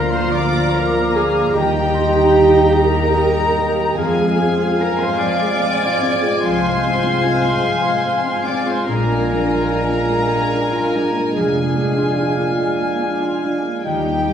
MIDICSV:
0, 0, Header, 1, 11, 480
1, 0, Start_track
1, 0, Tempo, 814111
1, 2340, Time_signature, 12, 3, 24, 8
1, 4750, Tempo, 826446
1, 8396, End_track
2, 0, Start_track
2, 0, Title_t, "Flute"
2, 0, Program_c, 0, 73
2, 0, Note_on_c, 0, 82, 67
2, 184, Note_on_c, 0, 86, 66
2, 192, Note_off_c, 0, 82, 0
2, 908, Note_on_c, 0, 82, 68
2, 917, Note_off_c, 0, 86, 0
2, 1147, Note_on_c, 0, 84, 66
2, 1156, Note_off_c, 0, 82, 0
2, 1391, Note_on_c, 0, 82, 59
2, 1400, Note_off_c, 0, 84, 0
2, 1623, Note_off_c, 0, 82, 0
2, 1629, Note_on_c, 0, 82, 63
2, 2332, Note_off_c, 0, 82, 0
2, 2348, Note_on_c, 0, 80, 68
2, 3676, Note_off_c, 0, 80, 0
2, 3807, Note_on_c, 0, 80, 66
2, 5206, Note_off_c, 0, 80, 0
2, 5231, Note_on_c, 0, 80, 64
2, 6477, Note_off_c, 0, 80, 0
2, 6673, Note_on_c, 0, 80, 57
2, 8094, Note_off_c, 0, 80, 0
2, 8117, Note_on_c, 0, 79, 56
2, 8396, Note_off_c, 0, 79, 0
2, 8396, End_track
3, 0, Start_track
3, 0, Title_t, "Violin section"
3, 0, Program_c, 1, 48
3, 0, Note_on_c, 1, 82, 74
3, 69, Note_on_c, 1, 84, 80
3, 70, Note_off_c, 1, 82, 0
3, 189, Note_off_c, 1, 84, 0
3, 199, Note_on_c, 1, 86, 91
3, 428, Note_on_c, 1, 82, 79
3, 436, Note_off_c, 1, 86, 0
3, 668, Note_off_c, 1, 82, 0
3, 670, Note_on_c, 1, 80, 73
3, 905, Note_off_c, 1, 80, 0
3, 916, Note_on_c, 1, 79, 82
3, 1608, Note_off_c, 1, 79, 0
3, 1613, Note_on_c, 1, 82, 87
3, 2338, Note_off_c, 1, 82, 0
3, 2339, Note_on_c, 1, 80, 83
3, 2825, Note_off_c, 1, 80, 0
3, 2828, Note_on_c, 1, 82, 69
3, 2939, Note_on_c, 1, 84, 70
3, 2945, Note_off_c, 1, 82, 0
3, 3055, Note_on_c, 1, 86, 90
3, 3063, Note_off_c, 1, 84, 0
3, 3791, Note_off_c, 1, 86, 0
3, 3800, Note_on_c, 1, 84, 85
3, 4962, Note_off_c, 1, 84, 0
3, 4984, Note_on_c, 1, 86, 69
3, 5104, Note_off_c, 1, 86, 0
3, 5112, Note_on_c, 1, 84, 68
3, 5228, Note_off_c, 1, 84, 0
3, 5232, Note_on_c, 1, 82, 90
3, 6664, Note_off_c, 1, 82, 0
3, 6665, Note_on_c, 1, 80, 62
3, 7390, Note_off_c, 1, 80, 0
3, 8109, Note_on_c, 1, 79, 77
3, 8396, Note_off_c, 1, 79, 0
3, 8396, End_track
4, 0, Start_track
4, 0, Title_t, "Violin section"
4, 0, Program_c, 2, 48
4, 0, Note_on_c, 2, 82, 66
4, 2321, Note_off_c, 2, 82, 0
4, 2358, Note_on_c, 2, 80, 72
4, 5210, Note_off_c, 2, 80, 0
4, 5233, Note_on_c, 2, 80, 59
4, 8092, Note_off_c, 2, 80, 0
4, 8127, Note_on_c, 2, 79, 53
4, 8396, Note_off_c, 2, 79, 0
4, 8396, End_track
5, 0, Start_track
5, 0, Title_t, "Cor anglais"
5, 0, Program_c, 3, 69
5, 0, Note_on_c, 3, 77, 67
5, 883, Note_off_c, 3, 77, 0
5, 911, Note_on_c, 3, 79, 64
5, 1605, Note_off_c, 3, 79, 0
5, 1615, Note_on_c, 3, 79, 66
5, 2324, Note_off_c, 3, 79, 0
5, 2346, Note_on_c, 3, 77, 66
5, 3698, Note_off_c, 3, 77, 0
5, 3798, Note_on_c, 3, 77, 61
5, 5201, Note_off_c, 3, 77, 0
5, 5224, Note_on_c, 3, 77, 56
5, 6474, Note_off_c, 3, 77, 0
5, 6675, Note_on_c, 3, 77, 55
5, 8094, Note_off_c, 3, 77, 0
5, 8115, Note_on_c, 3, 79, 52
5, 8396, Note_off_c, 3, 79, 0
5, 8396, End_track
6, 0, Start_track
6, 0, Title_t, "Clarinet"
6, 0, Program_c, 4, 71
6, 0, Note_on_c, 4, 74, 62
6, 913, Note_on_c, 4, 75, 68
6, 922, Note_off_c, 4, 74, 0
6, 1616, Note_off_c, 4, 75, 0
6, 1619, Note_on_c, 4, 75, 64
6, 2327, Note_off_c, 4, 75, 0
6, 2336, Note_on_c, 4, 77, 64
6, 3771, Note_off_c, 4, 77, 0
6, 3810, Note_on_c, 4, 77, 66
6, 5136, Note_off_c, 4, 77, 0
6, 5235, Note_on_c, 4, 74, 61
6, 6479, Note_off_c, 4, 74, 0
6, 6674, Note_on_c, 4, 74, 62
6, 8094, Note_off_c, 4, 74, 0
6, 8113, Note_on_c, 4, 75, 51
6, 8396, Note_off_c, 4, 75, 0
6, 8396, End_track
7, 0, Start_track
7, 0, Title_t, "Cello section"
7, 0, Program_c, 5, 48
7, 0, Note_on_c, 5, 70, 81
7, 70, Note_off_c, 5, 70, 0
7, 78, Note_on_c, 5, 72, 82
7, 191, Note_off_c, 5, 72, 0
7, 194, Note_on_c, 5, 74, 82
7, 429, Note_off_c, 5, 74, 0
7, 436, Note_on_c, 5, 70, 81
7, 672, Note_off_c, 5, 70, 0
7, 678, Note_on_c, 5, 68, 73
7, 909, Note_off_c, 5, 68, 0
7, 913, Note_on_c, 5, 67, 73
7, 1621, Note_off_c, 5, 67, 0
7, 1622, Note_on_c, 5, 70, 85
7, 2342, Note_off_c, 5, 70, 0
7, 2343, Note_on_c, 5, 68, 80
7, 2818, Note_off_c, 5, 68, 0
7, 2833, Note_on_c, 5, 70, 78
7, 2950, Note_off_c, 5, 70, 0
7, 2960, Note_on_c, 5, 72, 79
7, 3069, Note_on_c, 5, 74, 90
7, 3073, Note_off_c, 5, 72, 0
7, 3798, Note_off_c, 5, 74, 0
7, 3801, Note_on_c, 5, 72, 78
7, 4986, Note_off_c, 5, 72, 0
7, 4990, Note_on_c, 5, 74, 75
7, 5107, Note_off_c, 5, 74, 0
7, 5118, Note_on_c, 5, 72, 76
7, 5230, Note_on_c, 5, 70, 78
7, 5231, Note_off_c, 5, 72, 0
7, 6640, Note_off_c, 5, 70, 0
7, 6670, Note_on_c, 5, 68, 64
7, 7392, Note_off_c, 5, 68, 0
7, 8116, Note_on_c, 5, 67, 69
7, 8396, Note_off_c, 5, 67, 0
7, 8396, End_track
8, 0, Start_track
8, 0, Title_t, "Harp"
8, 0, Program_c, 6, 46
8, 0, Note_on_c, 6, 50, 71
8, 0, Note_on_c, 6, 58, 55
8, 0, Note_on_c, 6, 65, 50
8, 201, Note_on_c, 6, 70, 57
8, 435, Note_off_c, 6, 65, 0
8, 442, Note_on_c, 6, 65, 49
8, 676, Note_off_c, 6, 58, 0
8, 683, Note_on_c, 6, 58, 51
8, 914, Note_on_c, 6, 51, 62
8, 928, Note_off_c, 6, 50, 0
8, 929, Note_off_c, 6, 65, 0
8, 1143, Note_off_c, 6, 58, 0
8, 1150, Note_on_c, 6, 58, 47
8, 1382, Note_on_c, 6, 67, 50
8, 1615, Note_off_c, 6, 70, 0
8, 1622, Note_on_c, 6, 70, 62
8, 1856, Note_off_c, 6, 67, 0
8, 1863, Note_on_c, 6, 67, 46
8, 2096, Note_off_c, 6, 58, 0
8, 2103, Note_on_c, 6, 58, 50
8, 2341, Note_on_c, 6, 53, 67
8, 2362, Note_off_c, 6, 58, 0
8, 2362, Note_off_c, 6, 70, 0
8, 2363, Note_off_c, 6, 67, 0
8, 2364, Note_off_c, 6, 51, 0
8, 2593, Note_on_c, 6, 65, 52
8, 2833, Note_on_c, 6, 72, 56
8, 3068, Note_on_c, 6, 77, 58
8, 3307, Note_off_c, 6, 72, 0
8, 3315, Note_on_c, 6, 72, 45
8, 3555, Note_off_c, 6, 65, 0
8, 3562, Note_on_c, 6, 65, 52
8, 3800, Note_on_c, 6, 56, 46
8, 4038, Note_off_c, 6, 65, 0
8, 4045, Note_on_c, 6, 65, 44
8, 4269, Note_off_c, 6, 72, 0
8, 4276, Note_on_c, 6, 72, 46
8, 4509, Note_off_c, 6, 77, 0
8, 4516, Note_on_c, 6, 77, 56
8, 4641, Note_off_c, 6, 53, 0
8, 4750, Note_off_c, 6, 72, 0
8, 4757, Note_on_c, 6, 72, 43
8, 4983, Note_off_c, 6, 65, 0
8, 4990, Note_on_c, 6, 65, 41
8, 5227, Note_on_c, 6, 46, 60
8, 5248, Note_off_c, 6, 72, 0
8, 5465, Note_off_c, 6, 56, 0
8, 5472, Note_on_c, 6, 56, 45
8, 5700, Note_off_c, 6, 65, 0
8, 5707, Note_on_c, 6, 65, 46
8, 5949, Note_on_c, 6, 68, 51
8, 6182, Note_off_c, 6, 65, 0
8, 6189, Note_on_c, 6, 65, 42
8, 6422, Note_off_c, 6, 56, 0
8, 6429, Note_on_c, 6, 56, 45
8, 6663, Note_on_c, 6, 53, 41
8, 6784, Note_off_c, 6, 77, 0
8, 6902, Note_off_c, 6, 56, 0
8, 6909, Note_on_c, 6, 56, 37
8, 7143, Note_off_c, 6, 65, 0
8, 7150, Note_on_c, 6, 65, 42
8, 7385, Note_off_c, 6, 68, 0
8, 7392, Note_on_c, 6, 68, 47
8, 7492, Note_off_c, 6, 46, 0
8, 7625, Note_off_c, 6, 65, 0
8, 7632, Note_on_c, 6, 65, 39
8, 7868, Note_off_c, 6, 56, 0
8, 7875, Note_on_c, 6, 56, 36
8, 8117, Note_on_c, 6, 51, 50
8, 8131, Note_off_c, 6, 53, 0
8, 8131, Note_off_c, 6, 65, 0
8, 8131, Note_off_c, 6, 68, 0
8, 8132, Note_off_c, 6, 56, 0
8, 8354, Note_on_c, 6, 55, 39
8, 8396, Note_off_c, 6, 51, 0
8, 8396, Note_off_c, 6, 55, 0
8, 8396, End_track
9, 0, Start_track
9, 0, Title_t, "Viola section"
9, 0, Program_c, 7, 48
9, 0, Note_on_c, 7, 58, 59
9, 0, Note_on_c, 7, 65, 57
9, 881, Note_off_c, 7, 65, 0
9, 882, Note_off_c, 7, 58, 0
9, 911, Note_on_c, 7, 63, 67
9, 911, Note_on_c, 7, 67, 78
9, 2319, Note_off_c, 7, 63, 0
9, 2319, Note_off_c, 7, 67, 0
9, 2343, Note_on_c, 7, 60, 61
9, 2347, Note_on_c, 7, 53, 60
9, 2457, Note_off_c, 7, 53, 0
9, 2469, Note_on_c, 7, 56, 56
9, 2580, Note_off_c, 7, 60, 0
9, 2587, Note_off_c, 7, 56, 0
9, 2587, Note_on_c, 7, 60, 56
9, 2706, Note_off_c, 7, 60, 0
9, 2709, Note_on_c, 7, 65, 50
9, 2828, Note_off_c, 7, 65, 0
9, 2832, Note_on_c, 7, 60, 59
9, 2947, Note_on_c, 7, 56, 56
9, 2949, Note_off_c, 7, 60, 0
9, 3067, Note_off_c, 7, 56, 0
9, 3072, Note_on_c, 7, 53, 64
9, 3188, Note_on_c, 7, 56, 57
9, 3190, Note_off_c, 7, 53, 0
9, 3309, Note_off_c, 7, 56, 0
9, 3310, Note_on_c, 7, 60, 54
9, 3431, Note_off_c, 7, 60, 0
9, 3436, Note_on_c, 7, 65, 56
9, 3556, Note_off_c, 7, 65, 0
9, 3557, Note_on_c, 7, 60, 59
9, 3673, Note_on_c, 7, 56, 55
9, 3677, Note_off_c, 7, 60, 0
9, 3796, Note_off_c, 7, 56, 0
9, 3796, Note_on_c, 7, 53, 66
9, 3908, Note_off_c, 7, 53, 0
9, 3918, Note_on_c, 7, 56, 56
9, 4037, Note_off_c, 7, 56, 0
9, 4040, Note_on_c, 7, 60, 54
9, 4157, Note_off_c, 7, 60, 0
9, 4158, Note_on_c, 7, 65, 55
9, 4275, Note_off_c, 7, 65, 0
9, 4277, Note_on_c, 7, 60, 53
9, 4394, Note_off_c, 7, 60, 0
9, 4395, Note_on_c, 7, 56, 48
9, 4511, Note_off_c, 7, 56, 0
9, 4519, Note_on_c, 7, 53, 54
9, 4633, Note_off_c, 7, 53, 0
9, 4635, Note_on_c, 7, 56, 49
9, 4750, Note_off_c, 7, 56, 0
9, 4750, Note_on_c, 7, 60, 49
9, 4867, Note_off_c, 7, 60, 0
9, 4872, Note_on_c, 7, 65, 50
9, 4987, Note_off_c, 7, 65, 0
9, 4987, Note_on_c, 7, 60, 47
9, 5105, Note_off_c, 7, 60, 0
9, 5109, Note_on_c, 7, 56, 48
9, 5225, Note_off_c, 7, 56, 0
9, 5232, Note_on_c, 7, 56, 50
9, 5234, Note_on_c, 7, 62, 48
9, 5340, Note_off_c, 7, 56, 0
9, 5352, Note_on_c, 7, 58, 55
9, 5453, Note_off_c, 7, 62, 0
9, 5460, Note_on_c, 7, 62, 56
9, 5467, Note_off_c, 7, 58, 0
9, 5580, Note_off_c, 7, 62, 0
9, 5583, Note_on_c, 7, 65, 49
9, 5701, Note_off_c, 7, 65, 0
9, 5704, Note_on_c, 7, 62, 53
9, 5822, Note_off_c, 7, 62, 0
9, 5828, Note_on_c, 7, 58, 47
9, 5944, Note_off_c, 7, 58, 0
9, 5945, Note_on_c, 7, 56, 51
9, 6058, Note_on_c, 7, 58, 48
9, 6062, Note_off_c, 7, 56, 0
9, 6173, Note_on_c, 7, 62, 49
9, 6178, Note_off_c, 7, 58, 0
9, 6292, Note_on_c, 7, 65, 51
9, 6295, Note_off_c, 7, 62, 0
9, 6415, Note_off_c, 7, 65, 0
9, 6416, Note_on_c, 7, 62, 49
9, 6538, Note_off_c, 7, 62, 0
9, 6539, Note_on_c, 7, 58, 44
9, 6659, Note_on_c, 7, 56, 58
9, 6661, Note_off_c, 7, 58, 0
9, 6773, Note_off_c, 7, 56, 0
9, 6787, Note_on_c, 7, 58, 52
9, 6907, Note_off_c, 7, 58, 0
9, 6907, Note_on_c, 7, 62, 47
9, 7027, Note_off_c, 7, 62, 0
9, 7033, Note_on_c, 7, 65, 45
9, 7150, Note_off_c, 7, 65, 0
9, 7156, Note_on_c, 7, 62, 49
9, 7268, Note_on_c, 7, 58, 48
9, 7272, Note_off_c, 7, 62, 0
9, 7388, Note_off_c, 7, 58, 0
9, 7393, Note_on_c, 7, 56, 47
9, 7511, Note_off_c, 7, 56, 0
9, 7514, Note_on_c, 7, 58, 49
9, 7631, Note_off_c, 7, 58, 0
9, 7634, Note_on_c, 7, 62, 46
9, 7748, Note_on_c, 7, 65, 48
9, 7752, Note_off_c, 7, 62, 0
9, 7869, Note_off_c, 7, 65, 0
9, 7869, Note_on_c, 7, 62, 42
9, 7990, Note_off_c, 7, 62, 0
9, 7994, Note_on_c, 7, 58, 43
9, 8108, Note_on_c, 7, 55, 46
9, 8108, Note_on_c, 7, 63, 43
9, 8112, Note_off_c, 7, 58, 0
9, 8220, Note_off_c, 7, 55, 0
9, 8231, Note_on_c, 7, 58, 43
9, 8344, Note_off_c, 7, 63, 0
9, 8350, Note_off_c, 7, 58, 0
9, 8351, Note_on_c, 7, 63, 47
9, 8396, Note_off_c, 7, 63, 0
9, 8396, End_track
10, 0, Start_track
10, 0, Title_t, "French horn section"
10, 0, Program_c, 8, 60
10, 0, Note_on_c, 8, 53, 73
10, 0, Note_on_c, 8, 58, 82
10, 889, Note_off_c, 8, 53, 0
10, 910, Note_on_c, 8, 55, 70
10, 2240, Note_off_c, 8, 55, 0
10, 2240, Note_off_c, 8, 58, 0
10, 2340, Note_on_c, 8, 56, 73
10, 2340, Note_on_c, 8, 60, 71
10, 5201, Note_off_c, 8, 56, 0
10, 5224, Note_off_c, 8, 60, 0
10, 5226, Note_on_c, 8, 62, 61
10, 5227, Note_on_c, 8, 56, 59
10, 8017, Note_off_c, 8, 56, 0
10, 8017, Note_off_c, 8, 62, 0
10, 8116, Note_on_c, 8, 55, 61
10, 8118, Note_on_c, 8, 63, 51
10, 8396, Note_off_c, 8, 55, 0
10, 8396, Note_off_c, 8, 63, 0
10, 8396, End_track
11, 0, Start_track
11, 0, Title_t, "Double bass section"
11, 0, Program_c, 10, 48
11, 0, Note_on_c, 10, 38, 74
11, 882, Note_off_c, 10, 38, 0
11, 907, Note_on_c, 10, 39, 71
11, 2317, Note_off_c, 10, 39, 0
11, 2346, Note_on_c, 10, 41, 70
11, 2949, Note_off_c, 10, 41, 0
11, 3796, Note_on_c, 10, 36, 71
11, 4391, Note_off_c, 10, 36, 0
11, 5225, Note_on_c, 10, 34, 67
11, 5821, Note_off_c, 10, 34, 0
11, 6665, Note_on_c, 10, 29, 64
11, 7270, Note_off_c, 10, 29, 0
11, 8115, Note_on_c, 10, 39, 57
11, 8396, Note_off_c, 10, 39, 0
11, 8396, End_track
0, 0, End_of_file